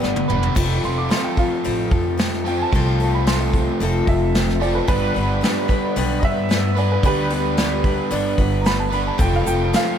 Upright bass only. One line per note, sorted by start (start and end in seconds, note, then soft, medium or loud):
0.03 0.27 G1 medium
0.30 0.54 F1 medium
0.56 0.80 F1 medium
0.84 1.07 F1 medium
1.66 1.89 A1 medium
1.92 2.62 F2 medium
2.72 3.67 C2 medium
3.80 4.04 F1 medium
4.07 4.78 F1 medium
4.89 5.12 G1 medium
5.16 5.39 G1 medium
5.96 6.20 B1 medium
6.23 6.94 G2 medium
7.04 7.98 D2 medium
8.11 8.35 G1 medium
8.38 9.09 G1 medium
9.19 9.43 F1 medium
9.46 9.70 F1 medium